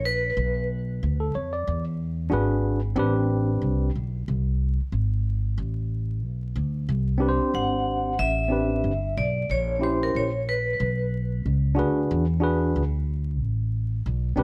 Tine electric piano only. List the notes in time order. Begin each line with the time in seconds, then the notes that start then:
1.20 A4
1.35 C#5
1.53 D5
2.30 D4 F#4 G#4 B4
2.96 C4 D4 G4 B4
7.18 C4 D4 G4 B4
7.29 C5
8.48 C4 D4 G4 B4
9.79 C#4 E4 G4 C5
11.75 D4 F#4 G#4
11.79 B4
12.40 D4 F#4 G#4 B4
14.36 C4 D4 G4 B4